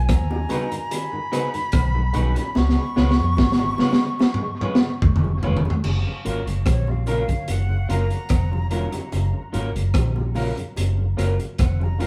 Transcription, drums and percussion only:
0.09 kick, cross-stick, closed hi-hat
0.31 high bongo
0.49 closed hi-hat, low bongo
0.72 closed hi-hat
0.91 closed hi-hat, high bongo
1.33 cross-stick, closed hi-hat
1.54 closed hi-hat
1.72 kick, cross-stick, closed hi-hat
2.14 closed hi-hat, low bongo
2.36 closed hi-hat, high bongo
2.55 snare, high bongo
2.69 snare
2.97 snare
3.11 snare
3.37 kick, snare, high bongo
3.52 snare
3.59 high bongo
3.78 snare, high bongo, low bongo
3.93 snare
4.19 snare, high bongo
4.34 mid tom
4.61 mid tom
4.75 snare
5.02 kick, floor tom
5.16 floor tom
5.24 high bongo
5.43 floor tom, low bongo
5.57 floor tom
5.65 high bongo
5.70 floor tom
5.84 crash, high bongo
6.25 closed hi-hat
6.47 closed hi-hat
6.66 kick, cross-stick, closed hi-hat, high bongo
6.87 high bongo
7.06 closed hi-hat, high bongo
7.29 kick, closed hi-hat
7.48 closed hi-hat, high bongo
7.90 closed hi-hat
8.10 closed hi-hat
8.29 kick, cross-stick, closed hi-hat
8.53 high bongo
8.71 closed hi-hat, low bongo
8.92 closed hi-hat, high bongo
9.12 closed hi-hat, high bongo
9.54 closed hi-hat
9.76 closed hi-hat
9.94 kick, cross-stick, closed hi-hat, high bongo
10.16 high bongo
10.35 open hi-hat, high bongo
10.57 closed hi-hat
10.76 closed hi-hat, high bongo
11.18 cross-stick, closed hi-hat
11.40 closed hi-hat
11.58 kick, cross-stick, closed hi-hat
11.81 high bongo
12.00 closed hi-hat, low bongo

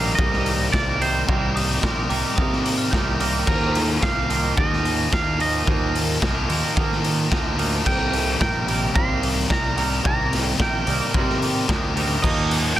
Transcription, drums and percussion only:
0.19 kick
0.33 snare
0.46 open hi-hat
0.73 kick, snare
1.02 open hi-hat
1.29 kick
1.57 open hi-hat
1.83 kick, snare
2.10 open hi-hat
2.38 kick
2.53 snare
2.66 open hi-hat
2.93 kick, snare
3.20 open hi-hat
3.47 kick, crash
3.75 snare, open hi-hat
4.03 kick, snare
4.30 open hi-hat
4.58 kick
4.73 snare
4.85 open hi-hat
5.13 kick, snare
5.40 open hi-hat
5.67 kick
5.95 open hi-hat
6.22 kick, snare
6.50 open hi-hat
6.77 kick
6.92 snare
7.04 open hi-hat
7.32 kick, snare
7.59 open hi-hat
7.86 kick, crash
8.13 open hi-hat
8.41 kick, snare
8.68 open hi-hat
8.96 kick
9.23 open hi-hat
9.50 kick, snare
9.78 open hi-hat
10.05 kick
10.33 snare, open hi-hat
10.60 kick, snare
10.87 open hi-hat
11.14 kick
11.30 snare
11.42 open hi-hat
11.69 kick, snare
11.97 open hi-hat
12.24 kick, crash
12.51 open hi-hat

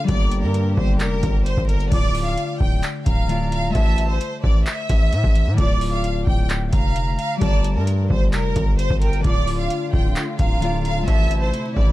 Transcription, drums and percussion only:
0.08 kick, closed hi-hat
0.32 closed hi-hat
0.54 closed hi-hat
0.77 kick
1.00 clap, closed hi-hat
1.23 kick, closed hi-hat
1.46 closed hi-hat
1.57 kick
1.69 closed hi-hat
1.80 closed hi-hat
1.92 kick, closed hi-hat, crash
2.15 open hi-hat
2.38 closed hi-hat
2.60 kick
2.83 clap, closed hi-hat
3.06 kick, closed hi-hat
3.29 closed hi-hat
3.52 closed hi-hat
3.75 kick, closed hi-hat
3.98 closed hi-hat
4.21 closed hi-hat
4.44 kick
4.66 clap, closed hi-hat
4.89 kick, closed hi-hat
5.13 closed hi-hat
5.24 kick
5.35 closed hi-hat
5.58 kick, closed hi-hat
5.81 open hi-hat
6.04 closed hi-hat
6.27 kick
6.50 clap, closed hi-hat
6.73 kick, closed hi-hat
6.96 closed hi-hat
7.19 closed hi-hat
7.41 kick, closed hi-hat
7.64 closed hi-hat
7.87 closed hi-hat
8.10 kick
8.33 clap, closed hi-hat
8.56 kick, closed hi-hat
8.79 closed hi-hat
8.90 kick
9.02 closed hi-hat
9.13 closed hi-hat
9.24 kick, closed hi-hat
9.48 open hi-hat
9.70 closed hi-hat
9.93 kick
10.16 clap, closed hi-hat
10.39 kick, closed hi-hat
10.62 closed hi-hat
10.85 closed hi-hat
11.08 kick, closed hi-hat
11.31 closed hi-hat
11.54 closed hi-hat
11.77 kick

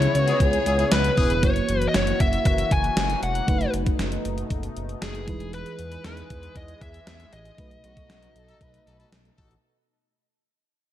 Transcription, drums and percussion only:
0.02 closed hi-hat
0.15 closed hi-hat
0.28 closed hi-hat
0.40 kick, closed hi-hat
0.53 closed hi-hat
0.66 closed hi-hat
0.79 closed hi-hat
0.92 snare, closed hi-hat
1.04 closed hi-hat
1.17 kick, open hi-hat
1.30 closed hi-hat
1.43 kick, closed hi-hat
1.56 closed hi-hat
1.69 closed hi-hat
1.82 closed hi-hat
1.94 snare, closed hi-hat
2.07 closed hi-hat
2.20 kick, closed hi-hat
2.33 closed hi-hat
2.45 kick, closed hi-hat
2.58 closed hi-hat
2.71 kick, closed hi-hat
2.84 closed hi-hat
2.97 snare, closed hi-hat
3.10 closed hi-hat
3.23 closed hi-hat
3.35 closed hi-hat
3.48 kick, closed hi-hat
3.61 closed hi-hat
3.74 closed hi-hat
3.86 kick, closed hi-hat
3.99 snare, closed hi-hat
4.12 closed hi-hat
4.25 closed hi-hat
4.38 closed hi-hat
4.50 kick, closed hi-hat
4.63 closed hi-hat
4.77 closed hi-hat
4.89 closed hi-hat
5.02 snare, closed hi-hat
5.15 closed hi-hat
5.28 kick, closed hi-hat
5.40 closed hi-hat
5.53 closed hi-hat
5.66 closed hi-hat
5.79 closed hi-hat
5.92 closed hi-hat
6.04 snare, closed hi-hat
6.17 closed hi-hat
6.30 kick, closed hi-hat
6.43 closed hi-hat
6.56 kick, closed hi-hat
6.68 closed hi-hat
6.81 kick, closed hi-hat
6.94 closed hi-hat
7.07 snare, closed hi-hat
7.20 closed hi-hat
7.33 closed hi-hat
7.45 closed hi-hat
7.58 kick, closed hi-hat
7.71 closed hi-hat
7.84 closed hi-hat
7.97 kick, closed hi-hat
8.10 snare, closed hi-hat
8.23 closed hi-hat
8.36 closed hi-hat
8.48 closed hi-hat
8.61 kick, closed hi-hat
8.74 closed hi-hat
8.87 closed hi-hat
9.00 closed hi-hat
9.12 snare, closed hi-hat
9.25 closed hi-hat
9.38 kick, open hi-hat
9.51 closed hi-hat

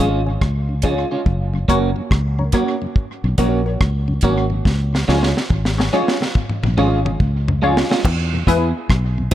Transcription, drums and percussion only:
0.41 kick, cross-stick
0.82 kick, closed hi-hat
1.26 kick
1.68 kick, closed hi-hat
2.11 kick, cross-stick
2.52 kick, cross-stick, closed hi-hat
2.96 kick
3.38 kick, closed hi-hat
3.81 kick, cross-stick
4.21 kick, closed hi-hat
4.65 kick, snare
4.95 snare
5.09 snare
5.23 snare
5.37 snare
5.50 kick
5.65 snare
5.80 snare
6.08 snare
6.22 snare
6.35 kick, mid tom
6.50 mid tom
6.64 mid tom
6.78 mid tom
7.06 mid tom
7.20 kick
7.48 floor tom
7.77 snare
7.91 snare
8.05 kick, crash, high bongo
8.47 kick, closed hi-hat
8.90 kick, cross-stick

